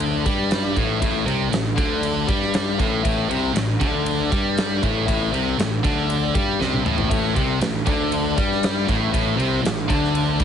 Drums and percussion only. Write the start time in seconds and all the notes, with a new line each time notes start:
0.00 ride
0.26 kick, ride
0.51 snare, ride
0.76 kick, ride
1.02 kick, ride
1.28 ride
1.53 snare, ride
1.78 kick, ride
2.03 ride
2.28 kick, ride
2.42 snare
2.54 snare, ride
2.79 kick, ride
3.05 kick, ride
3.31 ride
3.56 snare, ride
3.81 kick, ride
4.06 ride
4.32 kick, ride
4.57 snare, ride
4.83 kick, ride
5.08 kick, ride
5.34 ride
5.59 snare, ride
5.84 kick, ride
6.10 ride
6.35 kick, ride
6.61 snare
6.73 high tom
6.86 mid tom
6.98 floor tom
7.11 kick, ride
7.36 kick, ride
7.61 snare, ride
7.86 kick, ride
8.12 ride
8.38 kick, ride
8.52 snare
8.63 snare, ride
8.89 kick, ride
9.14 kick, ride
9.40 ride
9.65 snare, ride
9.90 kick, ride
10.04 snare
10.15 ride
10.40 kick, ride